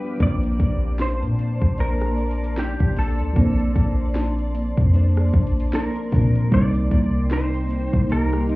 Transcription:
Already playing: G2 F3 G3 B3 D4 G4 B4 D5 F5 G5 D6
0.05 G4
0.17 A#1 F3 A#3 D5 A5 C6, kick, closed hi-hat
0.21 C4 D4 C5 D5
0.43 closed hi-hat
0.60 A#1 D4, kick, closed hi-hat
0.99 C5 C6, snare, closed hi-hat
1.22 A#2, closed hi-hat
1.39 closed hi-hat
1.62 A#1, kick, closed hi-hat
1.78 D4 A#4 C5, closed hi-hat
2.01 cross-stick, closed hi-hat
2.18 closed hi-hat
2.31 closed hi-hat
2.44 closed hi-hat
2.57 G4, snare
2.80 A#1, kick, closed hi-hat
2.96 D4 A4, open hi-hat
3.20 D2, closed hi-hat
3.33 A#1 F3 A#3 C4 A5, kick, closed hi-hat
3.39 D4 C5
3.59 closed hi-hat
3.75 A#1 D4, kick, closed hi-hat
4.15 snare, closed hi-hat
4.39 closed hi-hat
4.55 closed hi-hat
4.77 F2, kick, closed hi-hat
4.94 D4 A4 C5, closed hi-hat
5.17 cross-stick, closed hi-hat
5.34 A#1, kick, closed hi-hat
5.47 closed hi-hat
5.60 closed hi-hat
5.73 A#4, snare
5.96 closed hi-hat
6.11 A#2 F3 A#3 C4 D4 A#4, kick, open hi-hat
6.35 closed hi-hat
6.49 C2 C3 G3 A#3 D#4 G5, kick, closed hi-hat
6.53 C4 D#4 A#4 D5
6.75 closed hi-hat
6.91 C2 A#3, kick, closed hi-hat
7.31 C5, snare, closed hi-hat
7.54 closed hi-hat
7.70 closed hi-hat
7.93 C2, kick, closed hi-hat
8.10 A#3 D#4 G4 A#4, closed hi-hat
8.33 cross-stick, closed hi-hat
8.49 D#4, closed hi-hat

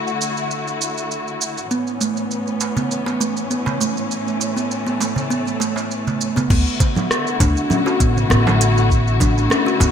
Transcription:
Already playing: D3 A3 E4 F#4
0.07 shaker
0.21 shaker
0.37 shaker
0.51 shaker
0.67 shaker
0.81 shaker
0.98 shaker
1.11 shaker
1.28 shaker
1.41 shaker
1.57 shaker
1.71 A2 E3 B3 C#4, shaker
1.87 shaker
2.01 A3, darbuka tek, shaker
2.17 shaker
2.31 shaker
2.47 shaker
2.61 darbuka tek, shaker
2.77 B3, darbuka dum, shaker
2.91 shaker
3.06 B3, darbuka ka, darbuka tek, shaker
3.20 A3, shaker
3.37 shaker
3.51 B3, shaker
3.66 darbuka ka, darbuka tek, darbuka dum, shaker
3.80 A3, darbuka ka, shaker
3.97 shaker
4.11 A3, shaker
4.28 shaker
4.40 darbuka tek, shaker
4.57 B3, shaker
4.71 shaker
4.87 B3, darbuka ka, shaker
5.00 A3, darbuka tek, shaker
5.16 darbuka dum, shaker
5.30 B3, shaker
5.47 darbuka ka, shaker
5.60 A3, darbuka ka, darbuka tek, shaker
5.76 darbuka tek, shaker
5.91 shaker
6.07 darbuka ka, darbuka dum, shaker
6.21 shaker
6.36 B3, darbuka ka, darbuka tek, darbuka dum, shaker
6.50 D2 D3 A3 B3 E4 F#4, kick, crash, shaker
6.67 shaker
6.80 kick, closed hi-hat, darbuka tek, darbuka dum, shaker
6.96 darbuka ka, low conga, shaker
7.11 cross-stick, shaker
7.27 shaker
7.40 D2 D4, kick, closed hi-hat, darbuka tek, darbuka dum, shaker
7.57 shaker
7.70 C#4, low conga, shaker
7.86 F#4, darbuka ka, darbuka tek, shaker
8.00 A1 B3, kick, closed hi-hat, shaker
8.17 darbuka dum, shaker
8.30 A1 B3, cross-stick, shaker
8.47 darbuka tek, low conga, shaker
8.61 closed hi-hat, shaker
8.78 shaker
8.90 kick, shaker
9.07 shaker
9.20 D4, kick, closed hi-hat, darbuka tek, darbuka dum, low conga, shaker
9.37 darbuka ka, shaker
9.50 C#4, cross-stick, shaker
9.66 F#4, shaker
9.80 D2 B3, closed hi-hat, darbuka tek, shaker

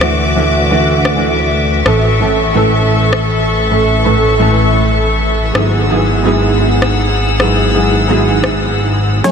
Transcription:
Already playing: D2 F#4 E5 D6
0.00 E3 A3 D4 F#4, cross-stick
0.35 E3 A3 D4 F#4
0.70 E3 A3 D4 F#4
1.05 cross-stick
1.15 E3 A3 D4 F#4
1.85 A1 A2 E3 A3 C#4 A4 C#6, cross-stick
2.20 A2 E3 A3 C#4 A4
2.54 A2 E3 A3 C#4 A4
3.13 cross-stick
3.70 A2 E3 A3 C#4 A4
4.04 A2 E3 A3 C#4 A4
4.38 A2 E3 A3 C#4 A4
5.54 G#1 G#2 F#3 B3 E4 G#4 F#5 E6, cross-stick
5.89 G#2 F#3 B3 E4 G#4
6.23 G#2 F#3 B3 E4 G#4
6.82 cross-stick
7.39 G#2 F#3 B3 E4 G#4, cross-stick
7.74 G#2 F#3 B3 E4 G#4
8.08 G#2 F#3 B3 E4 G#4
8.44 cross-stick
9.24 F#3 A3 C#4 G#4 C#5 F#5, kick, snare, closed hi-hat

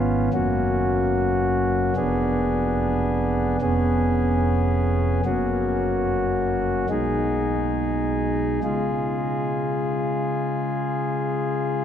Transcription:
Already playing: G#1 G#2 B3 C#4 F4
0.33 F#1 F#2 A#3 C#4 F#4
1.96 F1 F2 B3 D4 G#4
3.61 F1 F2 B3 C#4 G#4
5.25 F#1 F#2 A#3 C#4 F#4
6.89 B1 B2 G#3 D#4 G#4
8.64 C#3 G#3 F4 G#4

